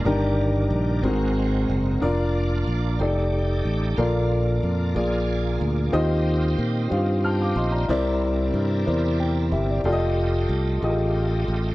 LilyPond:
<<
  \new Staff \with { instrumentName = "Grand piano" } { \time 6/8 \key bes \major \tempo 4. = 61 << { r2. | r2. | r2. | r2 <a'' f'''>16 <f'' d'''>16 <ees'' c'''>16 <d'' bes''>16~ |
<d'' bes''>16 r4. r16 <bes' g''>8 <g' e''>16 d''16~ | d''16 r2 r8. | } \\ { <d' ees' g' bes'>4 r8 <c' ges' aes' bes'>4 r8 | <d' f' bes' d''>4 r8 <ees' g' a' d''>4 r8 | <f' a' bes' d''>4 r8 <f' aes' bes' d''>4 r8 | <f' g' c'' ees''>4 r8 <f' g' c'' f''>4 r8 |
<e' bes' c'' d''>4 r8 <e' bes' c'' d''>4 r8 | <f' g' a' d'' ees''>4 r8 <f' g' aes' a' ees''>4 r8 | } >> }
  \new Staff \with { instrumentName = "Grand piano" } { \clef bass \time 6/8 \key bes \major g,4. aes,4. | r2. | bes,4. bes,4. | ees4. r4. |
c4. r4. | r2. | }
  \new Staff \with { instrumentName = "Tonewheel organ" } { \time 6/8 \key bes \major << { r2. | r2. | r2. | r2 g''8 ees''8 |
r2. | r2. | } \\ { <ees g bes' d''>4. <aes c' ges' bes'>4. | <bes d' f' d''>4. <a ees' g' c'' d''>4. | <bes f' c'' d''>4. <bes f' aes' d''>4. | <c' f' g' ees''>2. |
<c' e' bes' d''>2. | <a f' g' ees''>2. | } >> }
  \new Staff \with { instrumentName = "Fingered electric bass" } { \clef bass \time 6/8 \key bes \major g,,4 bes,,8 aes,,4 ges,,8 | f,,4 bes,,8 f,,4 a,,8 | bes,,4 f,8 bes,,4 d,8 | ees,4 bes,8 g,4 bes,,8 |
c,4 g,8 e,4 g,,8 | f,,4 c,8 a,,4 a,,8 | }
>>